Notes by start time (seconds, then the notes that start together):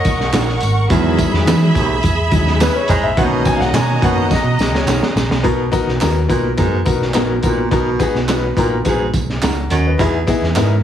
Already playing: A#4 F#5 C#6
0.05 B1 D#5, kick, closed hi-hat, tambourine
0.20 snare
0.33 A#1 D#4 F#4 A#4, snare, clap, closed hi-hat, tambourine
0.49 snare
0.61 G#1, closed hi-hat, tambourine
0.90 E2 D#3 F#3 G#3 G#4 E5 B5, kick, closed hi-hat, tambourine
1.19 kick, closed hi-hat, tambourine
1.33 E2, snare
1.46 E3 D#4 G#4 B4, snare, clap, closed hi-hat, tambourine
1.75 B1 D#2, kick, closed hi-hat, tambourine
2.03 E2, kick, closed hi-hat, tambourine
2.31 D#2 F#3 G#3 D#4, kick, closed hi-hat, tambourine
2.47 snare
2.60 D#4 G#4 B4, snare, clap, closed hi-hat, tambourine
2.76 C#5
2.88 E2 G#2 D#5, kick, closed hi-hat, tambourine
3.03 A#1 E5
3.17 B1 B2 D#3 A#3 C#4 F#4 D#5 F#5 A#5, kick, closed hi-hat
3.45 G#5, kick, closed hi-hat, tambourine
3.56 B1 F5
3.60 F#5, snare
3.73 B2 D#4 F#4 A#4 G#5, snare, clap, closed hi-hat, tambourine
4.02 F#1 B2 D#3 A#3 C#4 F#5, kick, closed hi-hat, tambourine
4.31 D#5, kick, snare, tambourine
4.44 B2
4.58 B1, snare, tambourine
4.72 C#2 C#5, snare
4.87 B1 D#4 F#4 A#4, snare, clap, tambourine
5.03 snare
5.15 A#1, snare, tambourine
5.29 B1, snare
5.43 B1 B2 B3 D#4 F#4 A#4, kick, closed hi-hat
5.72 B3 D#4 F#4 A#4, kick, closed hi-hat, tambourine
5.87 B1, snare
6.00 D#2 B3 D#4 F#4 A#4, snare, clap, closed hi-hat, tambourine
6.28 B1 A#2 B3 D#4 F#4 A#4, kick, closed hi-hat, tambourine
6.57 F#2 G#2 B3 D#4 F#4 A#4, kick, closed hi-hat, tambourine
6.85 B1 B3 D#4 F#4 A#4, kick, closed hi-hat, tambourine
7.02 snare
7.14 A#1 F#2 B3 D#4 F#4 A#4, snare, clap, closed hi-hat, tambourine
7.42 A#1 A#2 B3 D#4 F#4 A#4, kick, closed hi-hat, tambourine
7.71 B1 B2 B3 D#4 F#4 A#4, kick, closed hi-hat, tambourine
7.99 B3 D#4 F#4 G#4, kick, closed hi-hat, tambourine
8.14 B1, snare
8.28 B3 D#4 F#4 A#4 B4, snare, clap, closed hi-hat, tambourine
8.56 A#1 A#2 B3 D#4 F#4 A#4, kick, closed hi-hat, tambourine
8.85 A#1 G#2 B3 D#4 F#4 G#4, kick, closed hi-hat, tambourine
9.14 B1, kick, closed hi-hat, tambourine
9.30 snare
9.42 C#2 D#4 F#4 A#4 F#5 A#5, snare, clap, closed hi-hat, tambourine
9.70 D#2 F#2 D#5 F#5, closed hi-hat, tambourine
9.86 B4 D#5
9.99 E2 B3 D#4 E4 G#4, kick, closed hi-hat, tambourine
10.27 B3 D#4 E4 G#4, kick, closed hi-hat, tambourine
10.41 E2, snare
10.55 G#2 B3 D#4 E4 G#4 A#4 B4, snare, clap, closed hi-hat, tambourine